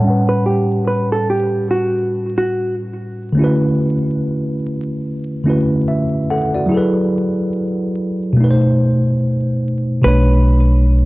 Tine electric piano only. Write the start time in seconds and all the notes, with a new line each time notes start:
Already playing: C#5 A5
0.00 A2 G3
0.04 C#4 F#5
0.10 B4
3.32 D3 A3
3.37 C#4 E4
3.42 F#4 B4
5.44 D3 A3 C#4 E4
5.48 F#4 B4
5.88 E5
6.30 A4 F#5
6.54 F#4 D5
6.66 F#3 E4
6.72 G#4 A4
6.77 B4
8.33 B2 A3
8.40 D#4 B4
8.51 C5
10.02 B2 A3 D4
10.08 C#5